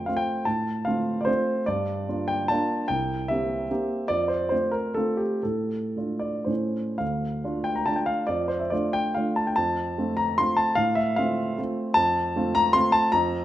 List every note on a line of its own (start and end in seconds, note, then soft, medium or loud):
0.00 0.09 F4 soft
0.00 0.10 C5 medium
0.06 0.44 A3 soft
0.06 0.44 C4 soft
0.06 0.44 F4 soft
0.06 0.17 F5 medium
0.17 0.47 G5 medium
0.45 0.85 A2 soft
0.45 0.86 A5 medium
0.85 1.24 A3 soft
0.85 1.24 C4 soft
0.85 1.24 F4 soft
0.85 1.20 F5 medium
1.21 1.28 D5 medium
1.25 1.63 A3 soft
1.25 1.63 C4 soft
1.25 1.64 F4 soft
1.25 1.66 C5 medium
1.66 2.07 G2 medium
1.66 2.29 D5 medium
2.09 2.46 A#3 soft
2.09 2.46 D4 soft
2.09 2.46 F4 soft
2.28 2.49 G5 medium
2.48 2.85 A#3 soft
2.48 2.86 D4 soft
2.48 2.86 F4 soft
2.48 2.88 A5 medium
2.88 3.29 C2 medium
2.88 3.29 G5 medium
3.28 3.66 A#3 soft
3.28 3.67 C4 soft
3.28 3.67 G4 soft
3.28 4.09 E5 medium
3.71 4.07 A#3 soft
3.71 4.06 C4 soft
3.71 4.07 G4 medium
4.08 4.51 F2 medium
4.08 4.29 D5 medium
4.28 4.48 C5 medium
4.49 4.93 A3 soft
4.49 4.93 C4 soft
4.49 4.93 F4 soft
4.49 4.73 C5 medium
4.71 4.96 A#4 medium
4.94 5.41 A3 soft
4.94 5.41 C4 soft
4.94 5.41 F4 soft
4.94 5.19 A4 medium
5.17 5.44 G4 medium
5.43 5.95 A2 soft
5.43 6.48 A4 medium
5.97 6.45 A3 soft
5.97 6.45 D4 soft
5.97 6.45 F4 soft
6.19 6.47 D5 medium
6.45 6.99 A2 soft
6.45 6.97 A3 soft
6.45 6.97 C#4 soft
6.45 6.97 E4 soft
6.45 7.00 C5 soft
6.98 7.43 D2 soft
6.98 7.65 F5 medium
7.44 7.84 A3 soft
7.44 7.84 D4 soft
7.44 7.84 F4 soft
7.64 7.76 G5 medium
7.75 7.87 A#5 medium
7.86 8.25 A3 soft
7.86 8.25 D4 soft
7.86 8.25 F4 soft
7.86 7.97 A5 medium
7.96 8.08 G5 medium
8.06 8.27 F5 medium
8.27 8.70 F2 medium
8.27 8.48 D5 medium
8.48 8.60 C5 medium
8.60 8.71 E5 medium
8.70 9.12 A3 soft
8.70 9.12 D4 soft
8.70 9.13 F4 soft
8.70 8.94 D5 medium
8.93 9.15 G5 medium
9.15 9.54 A3 soft
9.15 9.54 D4 soft
9.15 9.54 F4 soft
9.15 9.36 F5 medium
9.36 9.47 A5 medium
9.47 9.57 G5 medium
9.56 9.97 F2 medium
9.56 10.17 A5 medium
9.98 10.34 A3 soft
9.98 10.34 C4 soft
9.98 10.35 F4 soft
10.17 10.37 A#5 medium
10.38 10.74 A3 soft
10.38 10.74 C4 soft
10.38 10.74 F4 soft
10.38 10.57 C6 medium
10.57 10.76 A5 medium
10.75 11.17 A2 medium
10.75 10.96 F5 medium
10.95 11.17 E5 medium
11.16 11.55 A3 medium
11.16 11.55 C4 soft
11.16 11.55 F4 medium
11.16 11.38 F5 medium
11.58 11.93 A3 soft
11.58 11.93 C4 soft
11.58 11.93 F4 soft
11.94 12.35 F2 medium
11.94 12.55 A5 loud
12.36 12.71 A3 medium
12.36 12.72 C4 medium
12.36 12.72 F4 medium
12.55 12.75 A#5 loud
12.73 13.09 A3 soft
12.73 13.10 C4 medium
12.73 13.10 F4 medium
12.73 12.93 C6 loud
12.92 13.12 A5 loud
13.12 13.45 F2 medium
13.12 13.45 A#5 loud